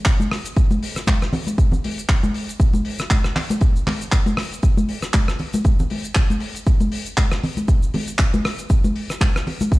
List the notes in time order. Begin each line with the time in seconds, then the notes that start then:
0.05 kick, clap, closed hi-hat, shaker
0.20 high conga, shaker
0.31 cross-stick, open hi-hat
0.45 closed hi-hat, shaker
0.56 kick, closed hi-hat, shaker
0.71 high conga, shaker
0.83 open hi-hat
0.96 cross-stick, closed hi-hat, shaker
1.07 kick, clap, high conga, shaker
1.22 cross-stick, shaker
1.33 open hi-hat, low conga
1.47 closed hi-hat, high conga, shaker
1.58 kick, closed hi-hat, shaker
1.72 low conga, shaker
1.84 open hi-hat, high conga
1.98 closed hi-hat, shaker
2.09 kick, clap, closed hi-hat, shaker
2.23 high conga, shaker
2.34 open hi-hat
2.49 closed hi-hat, shaker
2.60 kick, closed hi-hat, shaker
2.73 high conga, shaker
2.85 open hi-hat
2.99 cross-stick, closed hi-hat, shaker
3.10 kick, clap, closed hi-hat, high conga, shaker
3.24 cross-stick, shaker
3.36 clap, open hi-hat, low conga
3.49 closed hi-hat, high conga, shaker
3.61 kick, closed hi-hat, shaker
3.76 shaker
3.87 clap, open hi-hat, high conga, low conga
4.01 closed hi-hat, shaker
4.12 kick, clap, closed hi-hat, shaker
4.26 high conga, shaker
4.37 cross-stick, open hi-hat
4.52 closed hi-hat, shaker
4.63 kick, closed hi-hat, shaker
4.77 high conga, shaker
4.89 open hi-hat
5.02 cross-stick, closed hi-hat, shaker
5.13 kick, clap, closed hi-hat, high conga, shaker
5.28 cross-stick, shaker
5.39 open hi-hat, low conga
5.53 closed hi-hat, high conga, shaker
5.64 kick, closed hi-hat, shaker
5.79 low conga, shaker
5.90 open hi-hat, high conga
6.04 closed hi-hat, shaker
6.15 kick, clap, closed hi-hat, shaker
6.30 high conga, shaker
6.40 open hi-hat
6.55 closed hi-hat, shaker
6.67 kick, closed hi-hat, shaker
6.80 high conga, shaker
6.92 open hi-hat
7.06 closed hi-hat, shaker
7.17 kick, clap, closed hi-hat, high conga, shaker
7.32 cross-stick, shaker
7.43 open hi-hat, low conga
7.57 closed hi-hat, high conga, shaker
7.68 kick, closed hi-hat, shaker
7.83 shaker
7.94 open hi-hat, high conga, low conga
8.07 closed hi-hat, shaker
8.18 kick, clap, closed hi-hat, shaker
8.34 high conga, shaker
8.45 cross-stick, open hi-hat
8.58 closed hi-hat, shaker
8.70 kick, closed hi-hat, shaker
8.84 high conga, shaker
8.96 open hi-hat
9.09 cross-stick, closed hi-hat, shaker
9.21 kick, clap, closed hi-hat, high conga, shaker
9.36 cross-stick, shaker
9.47 open hi-hat, low conga
9.61 closed hi-hat, high conga, shaker
9.72 kick, closed hi-hat, shaker